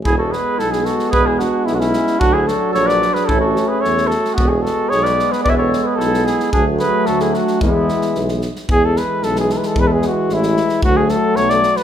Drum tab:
SD |--o-oooo|--o-oooo|--o-oooo|--o-oooo|
BD |o-------|o-------|o-------|o-------|

SD |--o-oooo|--o-oooo|--o-oooo|--oooooo|
BD |o-------|o-------|o-------|o-------|

SD |--o-oooo|--o-oooo|--o-oooo|
BD |o-------|o-------|o-------|